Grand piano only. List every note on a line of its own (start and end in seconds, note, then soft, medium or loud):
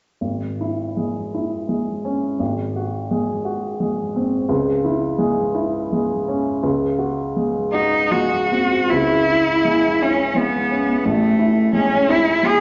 0.21 2.36 G#1 soft
0.61 1.19 E4 soft
0.97 1.54 G#3 soft
1.34 1.91 E4 soft
1.69 2.25 G#3 soft
2.05 2.40 C#4 soft
2.39 4.45 G#1 soft
2.76 3.32 F#4 soft
3.11 3.67 G#3 soft
3.45 4.01 F#4 soft
3.80 4.35 G#3 soft
4.16 4.50 C4 soft
4.49 6.59 C#2 soft
4.85 5.41 E4 soft
5.18 5.76 G#3 soft
5.55 6.12 E4 soft
5.92 6.49 G#3 soft
6.28 6.64 C#4 soft
6.63 8.87 C#2 soft
6.99 7.58 F#4 soft
7.36 7.96 G#3 soft
7.74 8.35 F#4 soft
8.11 8.75 G#3 soft
8.52 8.91 C4 soft
8.92 11.02 C#2 soft
9.27 9.86 E4 soft
9.64 10.22 G#3 soft
10.01 10.57 E4 soft
10.34 10.91 G#3 soft
10.71 11.06 C#4 soft
11.05 12.60 A1 soft
11.39 11.95 E4 soft
11.73 12.29 G#3 soft
12.09 12.60 E4 soft
12.43 12.60 G#3 soft